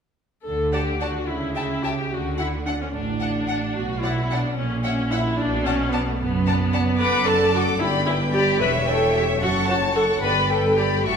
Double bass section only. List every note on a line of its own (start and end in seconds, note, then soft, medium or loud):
0.46 1.15 D2 soft
1.29 1.98 C#2 soft
2.12 2.80 D2 soft
2.94 3.62 A1 soft
3.76 4.44 B1 soft
4.57 5.25 A#1 soft
5.38 6.06 B1 medium
6.20 6.86 F#1 medium
7.00 7.76 F#1 medium
7.80 8.61 G1 medium
8.61 9.41 E1 medium
9.41 10.22 F#1 medium
10.22 11.04 G1 soft
11.06 11.17 A1 soft